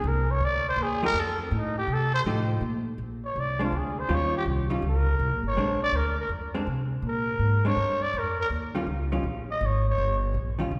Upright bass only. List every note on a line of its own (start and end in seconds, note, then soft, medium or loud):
0.04 0.40 C2 loud
0.40 0.76 D2 medium
0.76 1.13 D#2 loud
1.13 1.50 F2 medium
1.51 1.87 A2 loud
1.88 2.24 C3 medium
2.25 2.60 A2 medium
2.61 2.97 A#2 medium
2.98 3.34 A#1 medium
3.36 3.71 C2 medium
3.72 4.08 D2 medium
4.09 4.45 D#2 medium
4.46 4.82 C2 medium
4.82 5.18 C#2 medium
5.19 5.32 C2 medium
5.32 5.43 A#1 medium
5.43 5.55 G1 medium
5.55 5.91 A#1 medium
5.92 6.28 D2 medium
6.29 6.65 F2 medium
6.67 7.02 C3 medium
7.02 7.38 A#2 medium
7.39 7.75 G#2 medium
7.76 8.12 G2 medium
8.14 8.49 F2 loud
8.50 8.86 D#2 medium
8.87 9.23 C#2 medium
9.23 9.60 A#1 medium
9.61 9.97 G#1 loud
9.98 10.34 G1 medium
10.34 10.70 A#1 medium
10.71 10.79 C2 medium